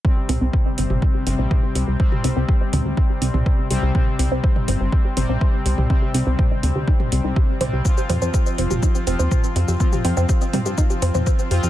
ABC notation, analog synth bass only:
X:1
M:4/4
L:1/16
Q:1/4=123
K:Fdor
V:1 name="Analog synth bass" clef=bass
z2 C,, C,, z2 G,,, G,,, z2 G,,, B,,, z2 C,, C,, | z2 C,, C,, z2 D,, D,, z2 C,, C,, z2 C,, C,, | z2 C,, C,, z2 G,,, G,,, z2 G,,, B,,, z2 C,, C,, | z2 C,, C,, z2 D,, D,, z2 C,, C,, z2 C,, C,, |
z2 F,, F,, z2 F,,, F,,, z2 F,,, E,, z2 F,, F,, | z2 F,, F,, z2 G,, G,, z2 F,, F,, z2 F,, F,, |]